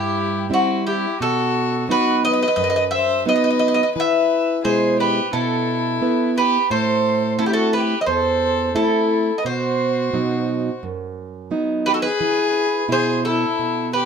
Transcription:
Already playing: G2 E4 G4
0.50 G3 C4 E4 F#4
0.87 E4 G4
1.20 B2 F#4 A4
1.89 F#3 B3 D#4 F#4 B4
2.25 B4 D#5
2.33 D#5
2.43 D#5
2.48 D#5
2.56 F#2 D#5
2.64 D#5
2.70 D#5
2.76 D#5
2.91 C5 E5
3.26 F#3 B3 D#4 B4 D#5
3.36 D#5
3.44 D#5
3.50 D#5
3.59 D#5
3.68 D#5
3.74 D#5
3.83 D#5
3.95 E3 B4
4.00 E5
4.64 B2 G#3 E4 G#4 C5
4.99 G4 B4
5.33 B2 E4 A4
6.02 B3 E4 B4
6.38 G4 B4
6.70 A2 A4 C5
7.38 A3 C4 E4 A4
7.46 E4 G4
7.53 F#4 A4
7.73 G4 B4
8.01 B4 D#5
8.06 E2 A4 C5
8.74 A3 C4 E4 A4
9.38 B4 D#5
9.45 B2 F#4 C5
10.13 B2 F#3 D#4
10.83 F#2
11.51 F#3 B3 D#4
11.86 G4 B4
11.94 F#4 A4
12.01 G#4 B4
12.21 E3
12.88 B2 E4 G#4 C5
13.25 E4 A4
13.59 B2
13.93 G4 B4

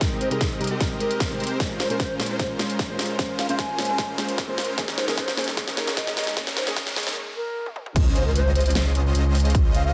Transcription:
0.00 C3 G3 D#4 A#4, kick, snare, closed hi-hat
0.21 C5, closed hi-hat
0.30 C3 G3 G#3 C4 D#4 G4 G#4 A#4 D#5, closed hi-hat
0.41 kick, snare, closed hi-hat
0.60 C3 G3 D#4 A#4, closed hi-hat
0.64 closed hi-hat
0.67 G#3 C4 G4 A#4 D#5, closed hi-hat
0.80 C3 G3 D#4 A#4, kick, snare, closed hi-hat
1.00 A#4, closed hi-hat
1.11 closed hi-hat
1.20 G#3 C4 G4 A#4, kick, snare, closed hi-hat
1.29 C3 G3 D#4 A#4
1.40 closed hi-hat
1.44 closed hi-hat
1.47 closed hi-hat
1.59 A#2 G#3 C#4 F4 A#4 C5, kick, snare, closed hi-hat, riser
1.80 C5, snare, closed hi-hat
1.89 A#2 G#3 C#4 F4 A#4 C5, closed hi-hat
2.00 C5, kick, snare, closed hi-hat
2.19 A#2 G#3 C#4 C5, snare, closed hi-hat
2.23 closed hi-hat
2.26 G#3 C#4 F4 A#4 C5, closed hi-hat
2.38 A#2 G#3 C#4 C5, kick, snare, closed hi-hat
2.58 A#2 G#3 C#4 C5, snare, closed hi-hat
2.70 closed hi-hat
2.79 kick, snare, closed hi-hat
2.88 A#2 G#3 C#4 C5
2.99 snare, closed hi-hat, open hi-hat
3.06 closed hi-hat
3.18 A#2 G#3 C#4 C5, kick, snare, closed hi-hat
3.39 F5, snare, closed hi-hat
3.48 A#2 G#3 C#4 F4 A#4 C5 F5, closed hi-hat
3.59 G#5, kick, snare, closed hi-hat
3.77 A#2 G#3 C#4 C5, snare, closed hi-hat
3.82 closed hi-hat
3.85 G#3 C#4 F4 A#4 C5, closed hi-hat
3.97 A#2 G#3 C#4 C5, kick, snare, closed hi-hat
4.17 A#2 G#3 C#4 C5, snare, closed hi-hat
4.29 closed hi-hat
4.38 kick, snare, closed hi-hat
4.47 A#2 G#3 C#4 C5
4.58 snare, closed hi-hat, open hi-hat
4.65 closed hi-hat
4.77 D#3 G#3 A#3 C#4 D#4 G#4 A#4 C#5, kick, snare, closed hi-hat
4.88 snare
4.98 C5, snare, closed hi-hat
5.07 D#3 G#3 A#3 C#4 D#4 G#4 A#4 C#5, snare, closed hi-hat
5.18 C5, kick, snare, closed hi-hat
5.28 snare
5.36 D#3 A#3 C#4 G#4 C5, snare, closed hi-hat
5.41 closed hi-hat
5.44 G#3 C#4 D#4 A#4 C#5, snare, closed hi-hat
5.56 D#3 A#3 C#4 G#4, kick, snare, closed hi-hat
5.68 snare
5.76 D#3 A#3 C#4 G#4 A#4, snare, closed hi-hat
5.87 snare, closed hi-hat
5.97 D#5, kick, snare, closed hi-hat
6.06 D#3 A#3 C#4 G#4, snare
6.17 D#5, snare, closed hi-hat, open hi-hat
6.24 D#5, snare, closed hi-hat
6.36 D#3 A#3 C#4 G#4, kick, snare, closed hi-hat
6.47 snare
6.57 C5, snare, closed hi-hat
6.66 D#3 G#3 A#3 C#4 D#4 G#4 A#4 C#5, snare, closed hi-hat
6.76 kick, snare, closed hi-hat
6.87 snare
6.95 D#3 A#3 C#4 G#4, snare, closed hi-hat
7.00 closed hi-hat
7.03 G#3 C#4 D#4 A#4 C#5, snare, closed hi-hat
7.36 A#4
7.66 high tom
7.76 mid tom
7.86 mid tom
7.96 C#2 G#3 C#4 F4 C5 D#5, kick, closed hi-hat, crash, impact
8.16 C5, closed hi-hat
8.26 C#2 G#3 C#4 F4 A#4 C5 D#5
8.35 C5, closed hi-hat
8.55 C5, closed hi-hat
8.61 closed hi-hat
8.66 C#2 G#3 C#4 F4 C5 D#5, closed hi-hat
8.70 closed hi-hat
8.75 C5, snare, closed hi-hat
8.95 closed hi-hat
9.15 C#2 G#3 C#4 F4 C5 D#5, closed hi-hat
9.35 open hi-hat
9.40 closed hi-hat
9.45 closed hi-hat
9.50 closed hi-hat
9.55 C#2 F4, kick, closed hi-hat
9.74 F5, closed hi-hat
9.85 C#2 G#3 C#4 F4 C5 D#5 F5

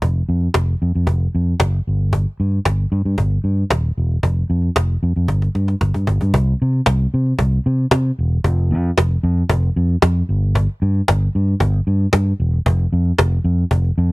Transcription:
0.02 F1, cajon bass
0.29 F2
0.41 cajon slap
0.54 F1, cajon bass, cajon slap
0.82 F2
0.94 F2, cajon slap
1.07 F1, cajon bass
1.20 cajon slap
1.35 F2
1.46 cajon slap
1.60 F#1, cajon bass, cajon slap
1.87 G1
2.01 cajon slap
2.13 cajon bass
2.40 G2
2.52 cajon slap
2.65 G1, cajon bass, cajon slap
2.92 G2
3.05 G2, cajon slap
3.18 G1, cajon bass
3.31 cajon slap
3.44 G2
3.57 cajon slap
3.70 D#1, cajon bass, cajon slap
3.98 E1
4.11 cajon slap
4.23 F1, cajon bass
4.50 F2
4.62 cajon slap
4.76 F1, cajon bass, cajon slap
5.03 F2
5.16 F2, cajon slap
5.28 G1, cajon bass, cajon slap
5.42 cajon slap
5.55 G2, cajon slap
5.68 cajon slap
5.81 G1, cajon bass, cajon slap
5.94 G2, cajon bass
6.07 G1, cajon bass
6.21 G2, cajon bass
6.34 C2, cajon bass
6.47 cajon slap
6.62 C3
6.73 cajon slap
6.86 C2, cajon bass, cajon slap
6.99 cajon slap
7.14 C3
7.26 cajon slap
7.39 C2, cajon bass
7.51 cajon slap
7.66 C3
7.78 cajon slap
7.91 C3, cajon bass, cajon slap
8.05 cajon slap
8.19 E1
8.32 cajon slap
8.44 F1, cajon bass
8.58 cajon slap
8.71 F2
8.84 cajon slap
8.98 F1, cajon bass, cajon slap
9.11 cajon slap
9.23 F2
9.38 cajon slap
9.49 F1, cajon bass
9.63 cajon slap
9.76 F2
9.89 cajon slap
10.02 F2, cajon bass, cajon slap
10.16 cajon slap
10.29 G1
10.43 cajon slap
10.55 cajon bass
10.69 cajon slap
10.82 G2
10.95 cajon slap
11.08 G1, cajon bass, cajon slap
11.21 cajon slap
11.35 G2
11.48 cajon slap
11.60 G1, cajon bass
11.73 cajon slap
11.87 G2
12.00 cajon slap
12.13 G2, cajon bass, cajon slap
12.27 cajon slap
12.40 E1
12.54 cajon slap
12.66 F1, cajon bass
12.79 cajon slap
12.93 F2
13.05 cajon slap
13.18 F1, cajon bass, cajon slap
13.32 cajon slap
13.44 F2
13.59 cajon slap
13.71 F1, cajon bass
13.84 cajon slap
13.98 F2

